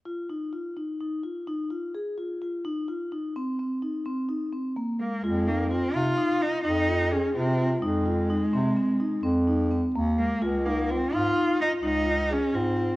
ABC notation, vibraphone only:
X:1
M:11/8
L:1/8
Q:1/4=127
K:Fm
V:1 name="Vibraphone"
F E F E E F E F A F F | E F E C C E C E C B, A, | F E F E E F E F A F F | E F E C C E C E C B, A, |
F E F E E F E F A F F |]